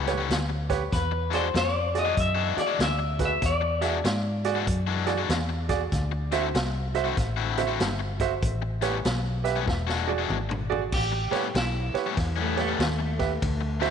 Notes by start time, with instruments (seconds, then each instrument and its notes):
Already playing: fingered electric bass C#2, overdriven electric guitar A2 G3 B3 C#4
0.07 grand piano G4 B4 C#5, snare, closed hi-hat
0.18 overdriven electric guitar A2 G3 B3 C#4
0.29 fingered electric bass D2, snare, closed hi-hat
0.49 muted overdriven electric guitar stroke
0.69 grand piano G4 B4 C#5, kick, snare, closed hi-hat
0.92 fingered electric bass E2, clean electric guitar B4, kick, snare, closed hi-hat
1.11 muted overdriven electric guitar stroke
1.30 overdriven electric guitar E3 G#3 D4 F#4, grand piano F#4 G#4 D5, snare, closed hi-hat
1.35 clean electric guitar C5
1.54 fingered electric bass F2, clean electric guitar D5, muted overdriven electric guitar stroke, snare, closed hi-hat
1.95 grand piano F#4 G#4 D5, snare, closed hi-hat
1.99 clean electric guitar D#5
2.05 overdriven electric guitar E3 G#3 D4 F#4
2.16 fingered electric bass F#2, muted overdriven electric guitar stroke, kick, closed hi-hat
2.20 clean electric guitar E5
2.35 overdriven electric guitar E3 G#3 D4 F#4
2.57 grand piano F#4 G#4 D5, clean electric guitar D5, muted fingered electric bass stroke, snare, closed hi-hat
2.67 overdriven electric guitar E3 G#3 D4 F#4
2.79 fingered electric bass D2, snare, closed hi-hat
2.83 clean electric guitar E5
2.99 muted overdriven electric guitar stroke
3.19 grand piano F#4 G#4 B4, kick, snare, closed hi-hat
3.25 clean electric guitar E5
3.42 fingered electric bass E2, kick, snare, closed hi-hat
3.46 clean electric guitar D5
3.61 muted overdriven electric guitar stroke
3.81 overdriven electric guitar E3 G#3 D4 F#4, grand piano F#4 G#4 E5, snare, closed hi-hat
4.04 fingered electric bass G#2, muted overdriven electric guitar stroke, snare, closed hi-hat
4.44 grand piano F#4 G#4 D5, snare, closed hi-hat
4.55 overdriven electric guitar E3 G#3 D4 F#4
4.67 fingered electric bass F#2, muted overdriven electric guitar stroke, kick, closed hi-hat
4.87 overdriven electric guitar E3 G#3 D4 F#4
5.06 grand piano F#4 G#4 D5, snare, closed hi-hat
5.18 overdriven electric guitar E3 G#3 D4 F#4
5.29 fingered electric bass E2, snare, closed hi-hat
5.49 muted overdriven electric guitar stroke
5.69 grand piano F#4 G#4 D5, kick, snare, closed hi-hat
5.92 fingered electric bass D2, kick, snare, closed hi-hat
6.12 muted overdriven electric guitar stroke
6.32 overdriven electric guitar D3 C4 E4 F#4, grand piano F#4 C5 E5, snare, closed hi-hat
6.55 fingered electric bass C2, muted overdriven electric guitar stroke, snare, closed hi-hat
6.95 grand piano F#4 C5 E5, snare, closed hi-hat
7.04 overdriven electric guitar D3 C4 E4 F#4
7.16 fingered electric bass A1, muted overdriven electric guitar stroke, kick, snare, closed hi-hat
7.37 overdriven electric guitar D3 C4 E4 F#4
7.57 grand piano F#4 C5 E5, snare, closed hi-hat
7.67 overdriven electric guitar D3 C4 E4 F#4
7.80 fingered electric bass G1, snare, closed hi-hat
8.00 muted overdriven electric guitar stroke
8.20 grand piano F#4 C5 E5, kick, snare, closed hi-hat
8.43 fingered electric bass A1, kick, closed hi-hat
8.62 muted overdriven electric guitar stroke
8.82 overdriven electric guitar A2 G3 B3 C#4, grand piano G4 B4 C#5, snare, closed hi-hat
9.05 fingered electric bass B1, muted overdriven electric guitar stroke, snare, closed hi-hat
9.44 grand piano G4 B4 E5, snare, closed hi-hat
9.56 overdriven electric guitar A2 G3 B3 C#4
9.67 fingered electric bass E1, muted overdriven electric guitar stroke, kick, snare
9.87 overdriven electric guitar E3 G#3 D4 F#4, snare
10.07 grand piano F#4 G#4 D5
10.18 overdriven electric guitar E3 G#3 D4 F#4
10.29 fingered electric bass G#1, mid tom
10.49 muted overdriven electric guitar stroke, mid tom
10.70 grand piano F#4 G#4 D5, floor tom
10.92 fingered electric bass A1, clean electric guitar G4, kick, snare, crash
11.12 muted overdriven electric guitar stroke
11.31 overdriven electric guitar A2 G3 B3 C#4, grand piano G4 B4 C#5, muted fingered electric bass stroke, snare, ride
11.54 fingered electric bass B1, clean electric guitar E4, muted overdriven electric guitar stroke, snare, ride
11.94 grand piano G4 B4 C#5, muted fingered electric bass stroke, snare, ride
12.06 overdriven electric guitar A2 G3 B3 C#4
12.17 fingered electric bass E2, muted overdriven electric guitar stroke, kick, snare, ride
12.36 overdriven electric guitar A2 G3 B3 C#4
12.41 clean electric guitar A3
12.57 grand piano G4 B4 C#5, snare, ride
12.61 clean electric guitar A3
12.68 overdriven electric guitar A2 G3 B3 C#4
12.79 fingered electric bass D#2, snare, ride
12.99 muted overdriven electric guitar stroke
13.19 grand piano G4 B4 E5, kick, snare, ride
13.42 fingered electric bass D2, kick, ride
13.61 muted overdriven electric guitar stroke
13.80 overdriven electric guitar D3 F#3 C4 E4, grand piano F#4 C5 E5, snare, ride